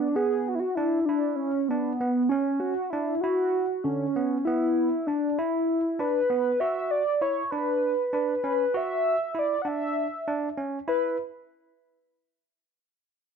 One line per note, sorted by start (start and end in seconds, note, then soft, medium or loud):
0.00 0.17 D4 medium
0.15 0.58 B3 medium
0.15 0.50 G#4 loud
0.48 0.56 F#4 medium
0.55 0.61 E4 medium
0.60 0.77 F#4 loud
0.75 0.99 D4 medium
0.75 1.07 E4 medium
1.06 1.37 D4 loud
1.06 1.50 E4 medium
1.36 1.70 C#4 medium
1.68 2.29 B3 medium
1.68 1.91 D4 medium
2.01 2.22 B3 medium
2.29 2.59 C#4 medium
2.29 2.73 C#4 medium
2.60 2.92 F#4 loud
2.90 3.14 D4 medium
2.90 3.22 E4 medium
3.21 3.65 E4 medium
3.21 3.85 F#4 loud
3.84 4.06 D3 medium
3.84 4.44 C#4 medium
4.16 4.37 B3 medium
4.45 4.88 B3 medium
4.45 5.08 E4 medium
5.07 5.40 D4 medium
5.07 5.29 D4 medium
5.39 5.80 E4 medium
5.39 5.99 E4 medium
5.99 6.20 D4 medium
5.99 6.61 B4 medium
6.30 6.51 B3 medium
6.60 7.02 F#4 medium
6.60 6.92 E5 loud
6.91 7.21 D5 loud
7.21 7.42 E4 medium
7.21 7.52 C#5 medium
7.51 7.94 D4 medium
7.51 8.13 B4 loud
8.13 8.34 D4 medium
8.13 8.78 B4 medium
8.44 8.65 C#4 medium
8.74 9.16 F#4 medium
8.74 9.40 E5 loud
9.35 9.56 E4 medium
9.39 9.63 D5 medium
9.62 10.06 D4 medium
9.62 9.69 F#5 medium
9.68 10.59 E5 loud
10.28 10.48 D4 medium
10.58 10.78 C#4 medium
10.88 11.16 E4 medium
10.88 11.17 B4 medium